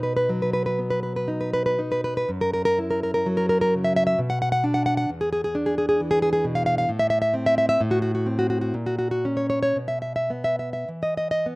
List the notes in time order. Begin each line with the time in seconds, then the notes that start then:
Already playing: B2 D#4
0.03 B4
0.17 B4
0.29 F#3
0.42 B4
0.53 B4
0.66 B4
0.79 B3
0.90 B4
1.03 B4
1.16 B4
1.28 D#4
1.41 B4
1.53 B4
1.66 B4
1.79 D#4
1.92 B4
2.04 B4
2.17 B4
2.29 F#2
2.41 A#4
2.54 A#4
2.65 A#4
2.79 E4
2.91 A#4
3.03 A#4
3.14 A#4
3.26 F#3
3.37 A#4
3.49 A#4
3.61 A#4
3.75 C#3
3.84 E5
3.96 E5
4.07 E5
4.18 B2
4.30 F#5
4.42 F#5
4.52 F#5
4.64 D4
4.74 F#5
4.86 F#5
4.97 F#5
5.09 E2
5.21 G#4
5.33 G#4
5.44 G#4
5.55 D4
5.66 G#4
5.78 G#4
5.89 G#4
6.00 E3
6.11 G#4
6.22 G#4
6.33 G#4
6.44 B2
6.55 F5
6.66 F5
6.78 F5
6.89 A2
6.99 E5
7.10 E5
7.22 E5
7.34 C4
7.46 E5
7.58 E5
7.69 E5
7.81 A2
7.91 F#4
8.02 F#4
8.15 F#4
8.26 C4
8.39 F#4
8.50 F#4
8.61 F#4
8.74 A#2
8.86 F#4
8.99 F#4
9.11 F#4
9.25 C#4
9.37 C#5
9.50 C#5
9.63 C#5
9.76 B2
9.88 E5
10.02 E5
10.16 E5
10.30 B3
10.44 E5
10.59 E5
10.73 E5
10.89 E3
11.03 D#5
11.17 D#5
11.31 D#5
11.46 B3